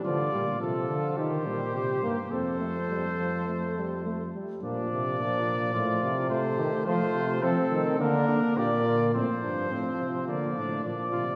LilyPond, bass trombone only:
\new Staff \with { instrumentName = "Bass trombone" } { \clef bass \time 4/4 \key bes \major \tempo 4 = 106 d8 bes,8 c8 d8 ees8 bes,8 c8 g,8 | f,2.~ f,8 r8 | bes,8 c8 bes,4 a,8 c4 ees8 | f8 c8 f8 ees8 d8 d8 bes,4 |
a,8 g,8 a,8 c8 d8 a,8 bes,8 c8 | }